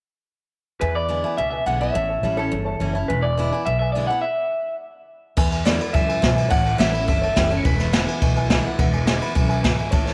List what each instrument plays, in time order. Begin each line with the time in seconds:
0.80 steel-string acoustic guitar E2, upright bass E2, upright piano B4 E5 G#5, clean electric guitar B4
0.95 upright piano B4 E5 B5, clean electric guitar D5
1.09 steel-string acoustic guitar D3 G#3 B3 E4, upright piano B4 E5 G#5
1.24 steel-string acoustic guitar B3 E4, upright piano B4 E5 G#5
1.38 upright bass C#2, steel-string acoustic guitar B2, clean electric guitar E5, upright piano G#5
1.51 upright piano B4 E5 G#5, clean electric guitar E5
1.66 upright bass B1, steel-string acoustic guitar D3 G#3 B3 E4, upright piano E5 G#5, clean electric guitar F#5
1.79 steel-string acoustic guitar B3 E4, upright piano B4 E5 G#5, clean electric guitar E5
1.93 upright bass A1, steel-string acoustic guitar A2, upright piano C#5 E5 A5
2.09 upright piano C#5 E5 A5
2.23 upright bass A1, steel-string acoustic guitar E3 G3 C#4 E4, upright piano C#5 E5 A5
2.37 steel-string acoustic guitar C#4 E4, clean electric guitar A4, upright piano C#5 E5 A5
2.51 upright bass G1, steel-string acoustic guitar E2, upright piano C#5 E5 A5
2.65 upright piano C#5 E5 A5
2.80 upright bass F#1, steel-string acoustic guitar E3 G3 C#4 E4, upright piano C#5 E5 A5
2.93 steel-string acoustic guitar C#4 E4, upright piano C#5 E5 A5
3.08 upright bass E1, steel-string acoustic guitar E2, upright piano B4 E5 G#5, clean electric guitar B4
3.22 upright piano B4 E5 G#5, clean electric guitar D5
3.36 steel-string acoustic guitar D3 G#3 B3 E4, upright piano B4 E5 G#5
3.51 steel-string acoustic guitar B3 E4, upright piano B4 E5 G#5
3.66 upright bass B1, steel-string acoustic guitar B2, upright piano B4 E5 G#5, clean electric guitar E5
3.79 upright piano B4 E5 G#5, clean electric guitar E5
3.92 steel-string acoustic guitar D3 G#3, upright piano B4 E5 G#5, clean electric guitar D5
3.96 steel-string acoustic guitar B3 E4
4.07 steel-string acoustic guitar E4, upright piano B4 E5 G#5, clean electric guitar F#5
4.12 steel-string acoustic guitar B3
4.21 clean electric guitar E5
5.37 steel-string acoustic guitar E2, upright bass E2, upright piano B4 E5 G#5, kick, crash
5.51 upright piano B4 E5 G#5, ride
5.65 steel-string acoustic guitar D3 G#3 B3 E4, upright piano B4 G#5, clean electric guitar D5, snare, ride
5.79 steel-string acoustic guitar B3 E4, upright piano B4 E5 B5, ride
5.93 upright bass C#2, steel-string acoustic guitar F#2, upright piano B4 E5 G#5, clean electric guitar E5, kick, ride
6.07 upright piano B4 E5 G#5, ride
6.21 upright bass B1, steel-string acoustic guitar G#2, upright piano B4 E5 G#5, kick, snare, ride
6.34 upright piano B4 E5 G#5, ride
6.49 upright bass A1, steel-string acoustic guitar A2, upright piano C#5 E5 A5, clean electric guitar F#5, kick, ride
6.63 upright piano C#5 E5 A5, ride
6.78 upright bass A1, steel-string acoustic guitar E3 G3 C#4 E4, upright piano C#5 E5 F#5, clean electric guitar E5, snare, ride
6.92 steel-string acoustic guitar C#4 E4, upright piano C#5 E5 B5, ride
7.07 upright bass G1, steel-string acoustic guitar E2, upright piano C#5 E5 A5, clean electric guitar E5, kick, ride
7.22 upright piano C#5 E5 A5, ride
7.36 upright bass F#1, steel-string acoustic guitar E3 G3 C#4 E4, upright piano C#5 E5 G5, kick, snare, ride
7.49 steel-string acoustic guitar C#4 E4, upright piano C#5 E5 A5, ride
7.57 clean electric guitar C#5
7.64 upright bass E1, steel-string acoustic guitar E2, upright piano B4 E5 G#5, clean electric guitar B4, kick, ride
7.79 upright piano B4 E5 B5, snare, ride
7.92 steel-string acoustic guitar D3 G#3 B3 E4, upright piano B4 E5 G#5, snare, ride
8.07 steel-string acoustic guitar B3 E4, upright piano B4 E5 G#5, ride
8.21 upright bass B1, steel-string acoustic guitar B2, upright piano B4 E5 G#5, kick, ride
8.36 upright piano B4 E5 G#5, ride
8.49 steel-string acoustic guitar D3 G#3 B3 E4, upright piano B4 E5 G#5, kick, snare, ride
8.64 steel-string acoustic guitar B3 E4, upright piano B4 E5 F#5, ride
8.78 upright bass E1, steel-string acoustic guitar E2, upright piano B4 E5 F#5, kick, ride
8.92 upright piano B4 E5 G#5, ride
9.06 steel-string acoustic guitar D3 G#3 B3 E4, upright piano B4 E5 G#5, snare, ride
9.20 steel-string acoustic guitar B3 E4, upright piano B4 E5 B5, ride
9.34 upright bass B1, steel-string acoustic guitar F#2, upright piano B4 G#5, kick, ride
9.47 upright piano B4 E5 G#5, ride
9.62 steel-string acoustic guitar G#2, upright piano B4 E5 G#5, kick, snare, ride
9.77 upright piano B4 E5 G#5, ride
9.91 upright bass A1, steel-string acoustic guitar A2, upright piano C#5 E5 A5, kick, ride
10.06 upright piano C#5 E5 A5, snare, ride